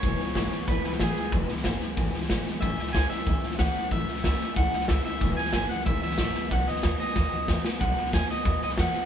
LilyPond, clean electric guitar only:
\new Staff \with { instrumentName = "Clean electric guitar" } { \time 4/4 \key e \major \tempo 4 = 185 cis''2 b'8 b'8 gis'4 | r1 | e''4 gis''8 e''4. fis''4 | e''4 e''4 fis''4 e''8 e''8~ |
e''8 gis''8 gis''8 fis''8 e''8 e''8 e''4 | fis''8 dis''4 dis''2 r8 | fis''4 gis''8 dis''4 dis''8 fis''4 | }